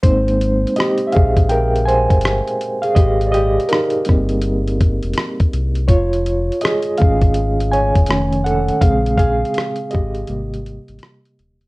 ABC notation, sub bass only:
X:1
M:4/4
L:1/16
Q:"Swing 16ths" 1/4=82
K:Ab
V:1 name="Sub bass" clef=bass
A,,,4 z2 B,,,4- B,,, G,,,2 z3 | A,,,4 z2 G,,,4- G,,, F,,, z2 C,,2 | F,,,4 z2 ^G,,,4- G,,, F,,, F,,,4 | B,,,4 z2 A,,,2 A,,,3 A,,, z2 E,,,2 |]